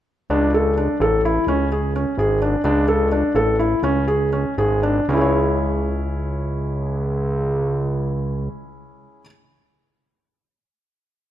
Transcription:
0, 0, Header, 1, 3, 480
1, 0, Start_track
1, 0, Tempo, 469484
1, 306, Time_signature, 5, 3, 24, 8
1, 3185, Tempo, 488202
1, 4625, Tempo, 527241
1, 10751, End_track
2, 0, Start_track
2, 0, Title_t, "Felt piano"
2, 0, Program_c, 0, 0
2, 310, Note_on_c, 0, 62, 70
2, 504, Note_off_c, 0, 62, 0
2, 555, Note_on_c, 0, 69, 56
2, 747, Note_off_c, 0, 69, 0
2, 791, Note_on_c, 0, 62, 57
2, 985, Note_off_c, 0, 62, 0
2, 1036, Note_on_c, 0, 69, 64
2, 1227, Note_off_c, 0, 69, 0
2, 1279, Note_on_c, 0, 64, 62
2, 1469, Note_off_c, 0, 64, 0
2, 1516, Note_on_c, 0, 61, 69
2, 1707, Note_off_c, 0, 61, 0
2, 1758, Note_on_c, 0, 68, 58
2, 1948, Note_off_c, 0, 68, 0
2, 2001, Note_on_c, 0, 61, 60
2, 2190, Note_off_c, 0, 61, 0
2, 2238, Note_on_c, 0, 68, 65
2, 2428, Note_off_c, 0, 68, 0
2, 2473, Note_on_c, 0, 62, 60
2, 2665, Note_off_c, 0, 62, 0
2, 2710, Note_on_c, 0, 62, 75
2, 2904, Note_off_c, 0, 62, 0
2, 2947, Note_on_c, 0, 69, 59
2, 3143, Note_off_c, 0, 69, 0
2, 3190, Note_on_c, 0, 62, 64
2, 3379, Note_off_c, 0, 62, 0
2, 3421, Note_on_c, 0, 69, 69
2, 3613, Note_off_c, 0, 69, 0
2, 3655, Note_on_c, 0, 64, 57
2, 3849, Note_off_c, 0, 64, 0
2, 3894, Note_on_c, 0, 61, 79
2, 4090, Note_off_c, 0, 61, 0
2, 4129, Note_on_c, 0, 68, 63
2, 4330, Note_off_c, 0, 68, 0
2, 4376, Note_on_c, 0, 61, 61
2, 4579, Note_off_c, 0, 61, 0
2, 4626, Note_on_c, 0, 68, 70
2, 4816, Note_off_c, 0, 68, 0
2, 4852, Note_on_c, 0, 62, 62
2, 5047, Note_off_c, 0, 62, 0
2, 5087, Note_on_c, 0, 61, 53
2, 5125, Note_on_c, 0, 64, 56
2, 5162, Note_on_c, 0, 68, 56
2, 5198, Note_on_c, 0, 73, 57
2, 8824, Note_off_c, 0, 61, 0
2, 8843, Note_off_c, 0, 64, 0
2, 8861, Note_off_c, 0, 68, 0
2, 8879, Note_off_c, 0, 73, 0
2, 10751, End_track
3, 0, Start_track
3, 0, Title_t, "Analog synth bass"
3, 0, Program_c, 1, 38
3, 305, Note_on_c, 1, 37, 81
3, 906, Note_off_c, 1, 37, 0
3, 1023, Note_on_c, 1, 33, 88
3, 1424, Note_off_c, 1, 33, 0
3, 1503, Note_on_c, 1, 37, 80
3, 2104, Note_off_c, 1, 37, 0
3, 2224, Note_on_c, 1, 32, 87
3, 2624, Note_off_c, 1, 32, 0
3, 2701, Note_on_c, 1, 37, 84
3, 3301, Note_off_c, 1, 37, 0
3, 3412, Note_on_c, 1, 33, 86
3, 3810, Note_off_c, 1, 33, 0
3, 3886, Note_on_c, 1, 37, 82
3, 4500, Note_off_c, 1, 37, 0
3, 4623, Note_on_c, 1, 32, 84
3, 5015, Note_off_c, 1, 32, 0
3, 5085, Note_on_c, 1, 37, 83
3, 8185, Note_off_c, 1, 37, 0
3, 10751, End_track
0, 0, End_of_file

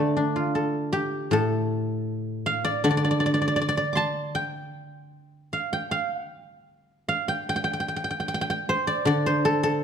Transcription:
0, 0, Header, 1, 2, 480
1, 0, Start_track
1, 0, Tempo, 776197
1, 822, Time_signature, 2, 2, 24, 8
1, 1299, Tempo, 757576
1, 2739, Tempo, 791557
1, 4179, Tempo, 767263
1, 6112, End_track
2, 0, Start_track
2, 0, Title_t, "Guzheng"
2, 0, Program_c, 0, 107
2, 0, Note_on_c, 0, 50, 40
2, 0, Note_on_c, 0, 57, 27
2, 0, Note_on_c, 0, 72, 60
2, 0, Note_on_c, 0, 74, 54
2, 102, Note_on_c, 0, 62, 32
2, 221, Note_on_c, 0, 65, 27
2, 340, Note_on_c, 0, 69, 32
2, 572, Note_on_c, 0, 67, 54
2, 810, Note_on_c, 0, 45, 43
2, 814, Note_off_c, 0, 69, 0
2, 819, Note_off_c, 0, 72, 0
2, 822, Note_on_c, 0, 69, 62
2, 949, Note_off_c, 0, 57, 0
2, 1001, Note_off_c, 0, 74, 0
2, 1065, Note_off_c, 0, 62, 0
2, 1182, Note_off_c, 0, 65, 0
2, 1299, Note_off_c, 0, 50, 0
2, 1527, Note_on_c, 0, 77, 66
2, 1644, Note_on_c, 0, 74, 69
2, 1766, Note_on_c, 0, 50, 50
2, 1767, Note_off_c, 0, 74, 0
2, 1768, Note_off_c, 0, 45, 0
2, 1769, Note_on_c, 0, 74, 73
2, 1806, Note_off_c, 0, 74, 0
2, 1809, Note_on_c, 0, 74, 53
2, 1848, Note_off_c, 0, 74, 0
2, 1851, Note_on_c, 0, 74, 58
2, 1894, Note_off_c, 0, 74, 0
2, 1897, Note_on_c, 0, 74, 43
2, 1934, Note_off_c, 0, 74, 0
2, 1936, Note_on_c, 0, 74, 54
2, 1993, Note_off_c, 0, 74, 0
2, 1995, Note_on_c, 0, 74, 44
2, 2030, Note_off_c, 0, 74, 0
2, 2032, Note_on_c, 0, 74, 53
2, 2047, Note_off_c, 0, 67, 0
2, 2080, Note_off_c, 0, 74, 0
2, 2083, Note_on_c, 0, 74, 48
2, 2129, Note_off_c, 0, 74, 0
2, 2132, Note_on_c, 0, 74, 53
2, 2168, Note_off_c, 0, 74, 0
2, 2170, Note_on_c, 0, 74, 50
2, 2200, Note_off_c, 0, 69, 0
2, 2221, Note_off_c, 0, 74, 0
2, 2224, Note_on_c, 0, 74, 55
2, 2255, Note_off_c, 0, 74, 0
2, 2258, Note_on_c, 0, 74, 46
2, 2300, Note_off_c, 0, 74, 0
2, 2303, Note_on_c, 0, 74, 61
2, 2356, Note_off_c, 0, 74, 0
2, 2359, Note_on_c, 0, 74, 53
2, 2457, Note_on_c, 0, 86, 33
2, 2473, Note_on_c, 0, 84, 39
2, 2481, Note_on_c, 0, 81, 68
2, 2584, Note_off_c, 0, 77, 0
2, 2723, Note_on_c, 0, 79, 71
2, 3207, Note_off_c, 0, 86, 0
2, 3213, Note_off_c, 0, 50, 0
2, 3277, Note_off_c, 0, 84, 0
2, 3370, Note_off_c, 0, 81, 0
2, 3440, Note_on_c, 0, 77, 51
2, 3495, Note_off_c, 0, 74, 0
2, 3558, Note_off_c, 0, 79, 0
2, 3560, Note_on_c, 0, 79, 54
2, 3670, Note_off_c, 0, 79, 0
2, 3673, Note_off_c, 0, 77, 0
2, 3673, Note_on_c, 0, 77, 62
2, 3800, Note_off_c, 0, 77, 0
2, 3800, Note_on_c, 0, 78, 62
2, 3885, Note_off_c, 0, 78, 0
2, 3885, Note_on_c, 0, 79, 62
2, 4390, Note_on_c, 0, 77, 61
2, 4511, Note_off_c, 0, 79, 0
2, 4513, Note_on_c, 0, 79, 63
2, 4642, Note_off_c, 0, 79, 0
2, 4644, Note_on_c, 0, 79, 68
2, 4683, Note_off_c, 0, 79, 0
2, 4686, Note_on_c, 0, 79, 47
2, 4734, Note_off_c, 0, 79, 0
2, 4737, Note_on_c, 0, 79, 55
2, 4793, Note_off_c, 0, 79, 0
2, 4795, Note_on_c, 0, 79, 42
2, 4835, Note_off_c, 0, 79, 0
2, 4837, Note_on_c, 0, 79, 47
2, 4887, Note_off_c, 0, 79, 0
2, 4889, Note_on_c, 0, 79, 41
2, 4937, Note_off_c, 0, 79, 0
2, 4939, Note_on_c, 0, 79, 45
2, 4986, Note_off_c, 0, 79, 0
2, 4988, Note_on_c, 0, 79, 43
2, 5026, Note_off_c, 0, 79, 0
2, 5028, Note_on_c, 0, 79, 47
2, 5084, Note_off_c, 0, 79, 0
2, 5086, Note_on_c, 0, 79, 44
2, 5136, Note_off_c, 0, 79, 0
2, 5138, Note_on_c, 0, 79, 49
2, 5174, Note_off_c, 0, 79, 0
2, 5177, Note_on_c, 0, 79, 46
2, 5218, Note_off_c, 0, 79, 0
2, 5220, Note_on_c, 0, 79, 55
2, 5272, Note_off_c, 0, 79, 0
2, 5274, Note_on_c, 0, 79, 52
2, 5394, Note_on_c, 0, 72, 59
2, 5433, Note_off_c, 0, 77, 0
2, 5508, Note_on_c, 0, 74, 60
2, 5621, Note_on_c, 0, 50, 50
2, 5629, Note_off_c, 0, 74, 0
2, 5632, Note_on_c, 0, 74, 76
2, 5750, Note_off_c, 0, 72, 0
2, 5753, Note_on_c, 0, 72, 60
2, 5869, Note_on_c, 0, 69, 70
2, 5982, Note_off_c, 0, 69, 0
2, 5984, Note_on_c, 0, 69, 68
2, 6112, Note_off_c, 0, 50, 0
2, 6112, Note_off_c, 0, 69, 0
2, 6112, Note_off_c, 0, 72, 0
2, 6112, Note_off_c, 0, 74, 0
2, 6112, Note_off_c, 0, 79, 0
2, 6112, End_track
0, 0, End_of_file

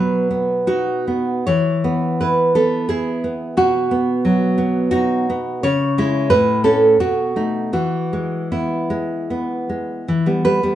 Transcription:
0, 0, Header, 1, 2, 480
1, 0, Start_track
1, 0, Key_signature, 4, "major"
1, 0, Tempo, 752823
1, 935, Time_signature, 3, 2, 24, 8
1, 1403, Tempo, 687285
1, 4763, Tempo, 738007
1, 5243, Tempo, 780234
1, 6683, Tempo, 721154
1, 7122, End_track
2, 0, Start_track
2, 0, Title_t, "Nylon-string guitar"
2, 0, Program_c, 0, 24
2, 0, Note_on_c, 0, 47, 41
2, 0, Note_on_c, 0, 54, 40
2, 0, Note_on_c, 0, 59, 43
2, 0, Note_on_c, 0, 71, 48
2, 187, Note_off_c, 0, 59, 0
2, 195, Note_on_c, 0, 59, 38
2, 414, Note_off_c, 0, 71, 0
2, 428, Note_on_c, 0, 66, 60
2, 431, Note_on_c, 0, 63, 36
2, 678, Note_off_c, 0, 59, 0
2, 681, Note_off_c, 0, 54, 0
2, 685, Note_on_c, 0, 59, 33
2, 910, Note_off_c, 0, 47, 0
2, 912, Note_off_c, 0, 66, 0
2, 934, Note_off_c, 0, 63, 0
2, 934, Note_on_c, 0, 73, 65
2, 937, Note_off_c, 0, 59, 0
2, 940, Note_on_c, 0, 52, 47
2, 1175, Note_on_c, 0, 59, 48
2, 1384, Note_off_c, 0, 73, 0
2, 1407, Note_on_c, 0, 71, 60
2, 1413, Note_on_c, 0, 64, 38
2, 1637, Note_off_c, 0, 71, 0
2, 1644, Note_off_c, 0, 59, 0
2, 1648, Note_on_c, 0, 69, 62
2, 1652, Note_on_c, 0, 59, 44
2, 1876, Note_off_c, 0, 69, 0
2, 1880, Note_off_c, 0, 64, 0
2, 1882, Note_on_c, 0, 68, 69
2, 1889, Note_on_c, 0, 64, 43
2, 2120, Note_off_c, 0, 59, 0
2, 2129, Note_on_c, 0, 59, 36
2, 2338, Note_off_c, 0, 52, 0
2, 2344, Note_off_c, 0, 68, 0
2, 2359, Note_off_c, 0, 64, 0
2, 2359, Note_on_c, 0, 47, 43
2, 2362, Note_on_c, 0, 66, 73
2, 2366, Note_off_c, 0, 59, 0
2, 2598, Note_on_c, 0, 59, 50
2, 2833, Note_on_c, 0, 54, 43
2, 3055, Note_off_c, 0, 59, 0
2, 3063, Note_on_c, 0, 59, 48
2, 3285, Note_off_c, 0, 66, 0
2, 3295, Note_on_c, 0, 66, 77
2, 3303, Note_on_c, 0, 63, 51
2, 3556, Note_off_c, 0, 59, 0
2, 3561, Note_off_c, 0, 54, 0
2, 3564, Note_on_c, 0, 59, 47
2, 3785, Note_off_c, 0, 66, 0
2, 3786, Note_off_c, 0, 47, 0
2, 3800, Note_on_c, 0, 73, 77
2, 3805, Note_on_c, 0, 49, 61
2, 3810, Note_off_c, 0, 63, 0
2, 3816, Note_off_c, 0, 59, 0
2, 4044, Note_on_c, 0, 56, 51
2, 4046, Note_on_c, 0, 64, 61
2, 4254, Note_off_c, 0, 56, 0
2, 4255, Note_off_c, 0, 64, 0
2, 4255, Note_off_c, 0, 73, 0
2, 4262, Note_off_c, 0, 49, 0
2, 4266, Note_on_c, 0, 71, 86
2, 4273, Note_on_c, 0, 45, 59
2, 4501, Note_off_c, 0, 71, 0
2, 4502, Note_on_c, 0, 57, 46
2, 4504, Note_on_c, 0, 69, 69
2, 4507, Note_on_c, 0, 61, 48
2, 4730, Note_off_c, 0, 57, 0
2, 4733, Note_off_c, 0, 61, 0
2, 4745, Note_off_c, 0, 45, 0
2, 4746, Note_off_c, 0, 69, 0
2, 4756, Note_on_c, 0, 47, 47
2, 4756, Note_on_c, 0, 66, 70
2, 4990, Note_on_c, 0, 57, 31
2, 4993, Note_on_c, 0, 63, 36
2, 5214, Note_off_c, 0, 57, 0
2, 5215, Note_off_c, 0, 63, 0
2, 5220, Note_off_c, 0, 66, 0
2, 5225, Note_off_c, 0, 47, 0
2, 5230, Note_on_c, 0, 52, 47
2, 5232, Note_on_c, 0, 66, 52
2, 5476, Note_on_c, 0, 56, 39
2, 5693, Note_off_c, 0, 66, 0
2, 5715, Note_on_c, 0, 59, 35
2, 5715, Note_on_c, 0, 64, 45
2, 5944, Note_off_c, 0, 56, 0
2, 5951, Note_on_c, 0, 56, 38
2, 6177, Note_off_c, 0, 64, 0
2, 6191, Note_off_c, 0, 59, 0
2, 6199, Note_on_c, 0, 59, 37
2, 6432, Note_off_c, 0, 56, 0
2, 6439, Note_on_c, 0, 56, 34
2, 6654, Note_off_c, 0, 52, 0
2, 6679, Note_on_c, 0, 52, 44
2, 6681, Note_off_c, 0, 56, 0
2, 6685, Note_off_c, 0, 59, 0
2, 6797, Note_on_c, 0, 55, 40
2, 6800, Note_off_c, 0, 52, 0
2, 6801, Note_on_c, 0, 59, 41
2, 6916, Note_off_c, 0, 55, 0
2, 6920, Note_on_c, 0, 71, 77
2, 6924, Note_on_c, 0, 55, 49
2, 7036, Note_off_c, 0, 55, 0
2, 7036, Note_off_c, 0, 59, 0
2, 7043, Note_on_c, 0, 55, 42
2, 7046, Note_on_c, 0, 59, 44
2, 7122, Note_off_c, 0, 55, 0
2, 7122, Note_off_c, 0, 59, 0
2, 7122, Note_off_c, 0, 71, 0
2, 7122, End_track
0, 0, End_of_file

